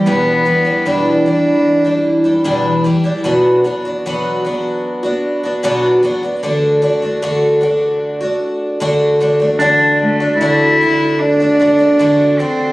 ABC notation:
X:1
M:4/4
L:1/16
Q:1/4=75
K:Dmix
V:1 name="Pedal steel guitar"
z16 | z16 | z16 | D16 |]
V:2 name="Twelve-string acoustic guitar"
[E,,B,,E,G,DE]2 [E,G,DE] [E,G,DE] [E,,B,,E,G,DE]2 [E,G,DE]3 [E,G,DE]2 [E,G,DE] [E,,B,,E,G,DE]2 [E,G,DE] [E,G,DE] | [B,,F,B,DF]2 [F,B,DF] [B,DF] [B,,F,B,DF]2 [F,B,DF]3 [B,DF]2 [B,DF] [B,,F,B,DF]2 [F,B,DF] [B,DF] | [D,A,DF]2 [D,A,DF] [A,DF] [D,A,DF]2 [D,A,DF]3 [A,DF]3 [D,A,DF]2 [D,A,DF] [A,DF] | [D,A,DF]3 [A,DF] [D,A,DF]2 [D,A,DF]3 [A,DF] [D,A,DF] [A,DF] [D,A,DF]2 [D,A,DF]2 |]
V:3 name="Cello"
B,4 D8 z4 | z16 | z16 | z2 A,2 E4 D6 C2 |]